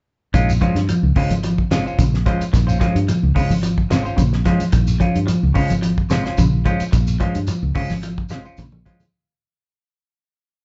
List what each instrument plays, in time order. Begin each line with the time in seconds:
0.34 fingered electric bass A#1, clean electric guitar D#3 G#3 C#4 F4, muted clean electric guitar stroke, kick, closed hi-hat, high conga, shekere
0.49 shekere
0.61 clean electric guitar F3 G#3 C#4 F4 C5, kick, closed hi-hat, high conga
0.75 fingered electric bass G2, snare, closed hi-hat, shekere
0.88 clean electric guitar F3, muted fingered electric bass stroke, closed hi-hat, high conga, shekere
1.03 fingered electric bass C#2
1.16 clean electric guitar C#3 G#3 C#4 F4 C5, muted fingered electric bass stroke, kick, open hi-hat, low conga, shekere
1.30 fingered electric bass G#1, closed hi-hat, high conga, shekere
1.43 clean electric guitar F3, closed hi-hat, high conga, shekere
1.58 kick
1.71 clean electric guitar C3 G#3 C#4 F4 C5, snare, closed hi-hat, high conga, shekere
1.86 clean electric guitar C#4 F4 C5, shekere
1.99 fingered electric bass A#1, clean electric guitar C#3, kick, closed hi-hat, high conga, shekere
2.14 snare
2.26 clean electric guitar F3 G#3 C#4 F4 C5, kick, closed hi-hat, low conga, shekere
2.40 muted fingered electric bass stroke, closed hi-hat, shekere
2.53 fingered electric bass A#1, clean electric guitar D#3, kick, snare, closed hi-hat, high conga, shekere
2.67 clean electric guitar C#4 F4 C5, shekere
2.80 clean electric guitar F3 G#3 C#4 F4 C5, kick, snare, closed hi-hat, high conga
2.95 fingered electric bass G2, closed hi-hat, shekere
3.08 clean electric guitar F3, muted fingered electric bass stroke, closed hi-hat, high conga, low conga, shekere
3.23 fingered electric bass C#2
3.35 clean electric guitar C#3 G#3 C#4 F4 C5, kick, open hi-hat, low conga, shekere
3.50 fingered electric bass G#1, high conga, shekere
3.63 clean electric guitar F3, closed hi-hat, shekere
3.78 kick
3.90 clean electric guitar C3 G#3 C#4 F4 C5, snare, closed hi-hat, high conga, shekere
4.05 clean electric guitar C#4 F4 C5, shekere
4.17 fingered electric bass A#1, clean electric guitar C#3, kick, closed hi-hat, high conga, shekere
4.33 snare
4.45 clean electric guitar F3 G#3 C#4 F4 C5, kick, snare, closed hi-hat, high conga, low conga, shekere
4.60 muted fingered electric bass stroke, closed hi-hat, high conga, shekere
4.72 fingered electric bass A#1, clean electric guitar D#3, kick, closed hi-hat, shekere
4.87 shekere
5.00 clean electric guitar F3 C#4 F4, kick, closed hi-hat, high conga
5.15 fingered electric bass G2, closed hi-hat, shekere
5.27 clean electric guitar F3, muted fingered electric bass stroke, closed hi-hat, high conga, shekere
5.43 fingered electric bass C#2
5.54 clean electric guitar C#3 G#3 C#4 F4 C5, kick, open hi-hat, low conga, shekere
5.70 fingered electric bass G#1, closed hi-hat, high conga, shekere
5.82 clean electric guitar F3, closed hi-hat, high conga, shekere
5.98 kick
6.10 clean electric guitar C3 G#3 C#4 F4 C5, snare, closed hi-hat, high conga, shekere
6.25 clean electric guitar C#4 F4 C5, snare, shekere
6.38 fingered electric bass A#1, clean electric guitar C#3, kick, closed hi-hat, high conga, shekere
6.65 clean electric guitar F3 G#3 C#4 F4 C5, kick, closed hi-hat, low conga, shekere
6.80 muted fingered electric bass stroke, closed hi-hat, shekere
6.92 fingered electric bass A#1, muted clean electric guitar stroke, kick, closed hi-hat, high conga, shekere
7.07 shekere
7.20 clean electric guitar F3 G#3 C#4 F4 C5, kick, closed hi-hat, high conga
7.34 fingered electric bass G2, closed hi-hat, shekere
7.47 clean electric guitar F3, muted fingered electric bass stroke, closed hi-hat, high conga, shekere
7.63 fingered electric bass C#2
7.75 clean electric guitar C#3 G#3 C#4 F4 C5, kick, open hi-hat, low conga, shekere
7.90 fingered electric bass G#1, snare, high conga, shekere
8.03 clean electric guitar F3, closed hi-hat, high conga, shekere
8.18 kick
8.29 clean electric guitar C3 G#3 C#4 F4 C5, snare, closed hi-hat, high conga, shekere
8.45 clean electric guitar C#4 F4 C5, shekere
8.57 fingered electric bass A#1, clean electric guitar C#3, kick, snare, closed hi-hat, high conga, shekere
8.72 high conga
8.86 clean electric guitar F3 G#3 C#4 F4 C5, kick, closed hi-hat, low conga, shekere
9.00 muted fingered electric bass stroke, closed hi-hat, low conga, shekere